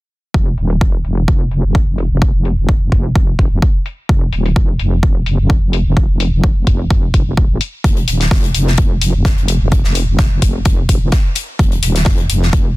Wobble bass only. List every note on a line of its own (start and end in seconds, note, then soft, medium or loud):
0.34 0.56 F1 medium
0.58 0.79 D#1 medium
0.81 1.03 F1 medium
1.05 1.26 F1 medium
1.28 1.62 F1 medium
1.64 2.09 F1 medium
2.11 2.33 F1 medium
2.35 2.56 F1 medium
2.58 2.90 F1 medium
2.92 3.14 F1 medium
3.16 3.37 F1 medium
3.39 3.50 F1 loud
3.52 3.61 F1 medium
4.09 4.31 F1 medium
4.33 4.54 D#1 medium
4.56 4.78 F1 medium
4.80 5.01 F1 medium
5.03 5.37 F1 medium
5.39 5.84 F1 medium
5.86 6.08 F1 medium
6.10 6.31 F1 medium
6.33 6.65 F1 loud
6.67 6.89 F1 medium
6.91 7.12 F1 loud
7.14 7.36 F1 medium
7.37 7.48 D#1 medium
7.50 7.59 G#1 loud
7.84 8.06 F1 loud
8.08 8.29 D#1 medium
8.31 8.53 F1 loud
8.54 8.76 F1 medium
8.78 9.12 F1 medium
9.14 9.59 F1 loud
9.61 9.83 F1 medium
9.85 10.06 F1 medium
10.08 10.40 F1 loud
10.42 10.64 F1 medium
10.66 10.87 F1 loud
10.89 11.00 F1 medium
11.02 11.11 F1 medium
11.59 11.81 F1 medium
11.83 12.04 D#1 medium
12.06 12.28 F1 medium
12.30 12.51 F1 medium
12.53 12.77 F1 medium